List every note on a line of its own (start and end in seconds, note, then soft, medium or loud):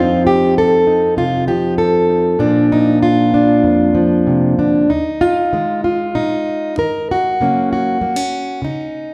0.00 2.36 F2 medium
0.00 1.47 F3 soft
0.00 2.37 C4 soft
0.00 0.86 D#4 soft
0.00 0.26 F4 medium
0.27 0.56 G4 loud
0.58 1.18 A4 loud
0.87 2.08 D#4 soft
1.17 1.47 C3 medium
1.17 1.48 F4 loud
1.47 2.39 F3 medium
1.47 1.78 G4 loud
1.78 2.40 A4 loud
2.09 2.36 D#4 soft
2.39 3.64 A#2 medium
2.39 3.93 F3 soft
2.39 4.87 A#3 soft
2.39 3.33 D4 medium
2.72 3.02 D#4 medium
3.03 4.59 F4 medium
3.34 4.57 D4 medium
3.63 4.86 F2 medium
3.95 4.86 F3 medium
4.27 4.58 C3 medium
4.59 4.90 D3 soft
4.59 4.90 D4 medium
4.90 5.47 D#2 medium
4.90 5.84 D#4 medium
5.21 5.83 F4 loud
5.53 6.09 D#3 medium
5.53 7.39 G#3 soft
5.84 6.77 F4 medium
6.15 6.71 A#2 medium
6.15 6.77 D#4 medium
6.78 7.33 D#3 medium
6.78 7.09 A#4 medium
7.11 7.71 F#4 medium
7.41 7.95 C#3 medium
7.41 8.01 F#3 soft
7.41 8.00 A#3 soft
7.41 8.01 C#4 medium
7.73 8.63 F#4 medium
8.01 8.56 F#3 medium
8.01 8.16 A#3 soft
8.16 9.14 C#4 soft
8.62 9.14 C#3 medium
8.62 9.14 D#4 medium